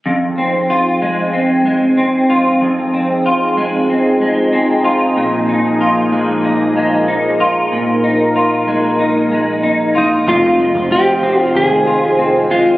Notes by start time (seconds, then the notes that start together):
0.05 F2 F3 C4 D#4 G#4
0.38 C4
0.70 F4
1.02 G#3
1.33 C4
1.65 G#3
1.97 C4
2.30 F4
2.61 F2
2.94 C4
3.26 F4
3.57 G#3
3.89 C4
4.21 G#3
4.53 C4
4.84 F4
5.17 A#2 A#3
5.49 D#4
5.81 F4
6.12 G#3
6.44 D#4
6.76 G#3
7.08 D#4
7.40 F4
7.72 A#2 A#4
8.04 D#4
8.36 F4
8.68 G#3
8.99 D#4
9.31 G#3
9.63 D#4
9.95 D#4 F4
10.27 F1 F2 F4 C5 D#5 F5
10.59 G#3
10.75 F1
10.91 F4 G4
11.22 F1 C4
11.41 F4
11.54 F1 D#3 G#4
11.87 F4
12.19 C4
12.51 G#3 F4